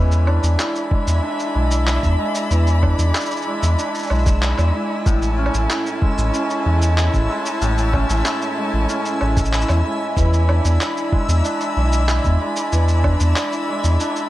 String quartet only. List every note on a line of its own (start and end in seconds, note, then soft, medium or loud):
0.00 14.29 E4 medium
0.00 5.02 D5 medium
0.00 14.29 G#5 medium
0.00 5.02 B5 medium
5.06 10.13 C#5 medium
5.06 10.13 A5 medium
10.17 14.29 D5 medium
10.17 14.29 B5 medium